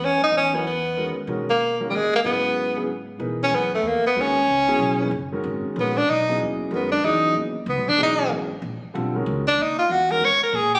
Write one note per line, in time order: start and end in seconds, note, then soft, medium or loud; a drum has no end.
0.00 0.17 E2 medium
0.05 0.23 C#4 medium
0.21 0.31 F2 medium
0.21 0.33 D#4 medium
0.32 1.12 E2 medium
0.37 0.57 C#4 loud
0.53 0.63 F#3 medium
0.53 0.63 B3 medium
0.53 0.66 B3 medium
0.53 0.64 E4 medium
0.53 0.63 A#4 medium
0.53 0.64 C#5 medium
0.67 1.14 B3 medium
0.97 1.15 D#3 medium
0.97 1.15 G#3 soft
0.97 1.15 C#4 soft
0.97 1.15 F#4 soft
0.97 1.15 A#4 medium
1.16 muted upright bass stroke soft
1.27 1.88 B2 medium
1.27 1.46 D#3 medium
1.27 1.47 G#3 medium
1.27 1.47 C#4 medium
1.27 1.47 F#4 medium
1.27 1.47 A#4 medium
1.50 1.79 A#3 medium
1.80 1.91 D#3 medium
1.80 1.91 G#3 medium
1.80 1.91 C#4 medium
1.80 1.91 F#4 medium
1.80 1.91 A#4 medium
1.90 2.21 D#2 medium
1.90 1.97 G3 medium
1.95 2.15 G#3 medium
2.16 2.20 A#3 medium
2.24 3.16 G#2 medium
2.24 2.72 C#3 medium
2.24 2.72 F#3 medium
2.24 2.72 B3 medium
2.24 2.85 B3 medium
2.24 2.72 E4 medium
2.24 2.72 G#4 medium
2.76 2.87 C#3 medium
2.76 2.87 F#3 medium
2.76 2.87 B3 medium
2.76 2.87 E4 medium
2.76 2.87 G#4 medium
3.19 3.50 B2 medium
3.19 3.68 E3 medium
3.19 3.68 D#4 soft
3.19 3.68 G#4 soft
3.19 3.68 A#4 soft
3.19 3.68 B4 medium
3.43 3.56 C#4 medium
3.51 3.82 F#2 medium
3.51 3.74 B3 medium
3.75 3.89 A3 medium
3.82 4.02 E2 medium
3.87 4.06 A#3 medium
4.04 4.22 B3 medium
4.04 muted upright bass stroke soft
4.15 4.46 D#2 medium
4.15 4.34 D#3 medium
4.15 4.34 G#3 medium
4.15 4.34 C#4 medium
4.15 4.35 F#4 medium
4.15 4.34 A#4 medium
4.21 5.14 C#4 medium
4.47 4.78 C#2 medium
4.68 4.98 C#3 medium
4.68 4.98 F#3 medium
4.68 4.98 B3 medium
4.68 4.98 E4 medium
4.68 4.98 G#4 medium
4.78 5.10 B1 medium
5.00 5.11 E3 medium
5.00 5.11 A#3 medium
5.00 5.11 D#4 medium
5.00 5.11 G#4 medium
5.00 5.11 B4 medium
5.11 5.42 F#1 medium
5.32 5.73 D#3 medium
5.32 5.73 G#3 medium
5.32 5.73 C#4 medium
5.32 5.73 F#4 medium
5.32 5.74 A#4 medium
5.44 5.62 G#1 medium
5.65 muted upright bass stroke soft
5.76 6.07 A#1 medium
5.76 5.94 D#3 medium
5.76 5.94 G#3 medium
5.76 5.99 B3 medium
5.76 5.94 C#4 medium
5.76 5.94 F#4 medium
5.76 5.95 A#4 medium
5.98 6.12 D4 medium
6.08 6.38 B1 medium
6.08 6.41 D#4 medium
6.28 6.69 C#3 medium
6.28 6.69 F#3 medium
6.28 6.69 B3 medium
6.28 6.69 E4 medium
6.28 6.69 G#4 medium
6.40 6.70 D#2 medium
6.71 7.02 F#2 medium
6.71 6.90 D#3 medium
6.71 6.90 G#3 medium
6.71 6.90 C#4 medium
6.71 6.90 F#4 medium
6.71 6.90 A#4 medium
6.75 6.91 B3 medium
6.92 7.07 D4 medium
7.04 7.33 E2 medium
7.04 7.52 C#3 medium
7.04 7.52 E3 medium
7.04 7.52 F#3 medium
7.04 7.52 B3 soft
7.04 7.36 D#4 medium
7.04 7.52 G#4 medium
7.34 7.65 D#2 medium
7.66 7.77 C#2 medium
7.66 7.90 B3 medium
7.77 7.88 B1 medium
7.88 7.98 G#1 medium
7.88 7.99 D4 medium
7.98 8.29 B1 medium
7.98 8.47 C#3 medium
7.98 8.47 E3 medium
7.98 8.47 F#3 medium
7.98 8.47 B3 medium
7.98 8.47 G#4 medium
8.03 8.31 D#4 medium
8.30 8.61 G#1 medium
8.62 8.81 A#1 medium
8.83 muted upright bass stroke soft
8.94 9.26 B1 medium
8.94 9.12 D3 medium
8.94 9.12 G3 medium
8.94 9.12 C4 medium
8.94 9.12 F4 medium
8.94 9.13 A4 medium
9.15 9.42 D#3 medium
9.15 9.43 G#3 medium
9.15 9.43 C#4 medium
9.15 9.43 F#4 medium
9.15 9.43 A#4 medium
9.26 9.57 C#2 medium
9.48 9.64 D4 medium
9.58 9.89 D#2 medium
9.62 9.78 D#4 medium
9.79 9.93 F4 loud
9.89 10.20 E2 medium
9.89 10.13 F#4 medium
10.10 10.21 D#3 medium
10.10 10.21 G#3 medium
10.10 10.21 C#4 medium
10.10 10.21 F#4 medium
10.10 10.26 A#4 loud
10.10 10.21 A#4 medium
10.21 10.40 G#2 medium
10.21 10.43 C#5 loud
10.41 10.57 A#4 medium
10.41 muted upright bass stroke soft
10.53 10.80 A#2 medium
10.53 10.74 G#4 medium
10.75 10.80 G4 medium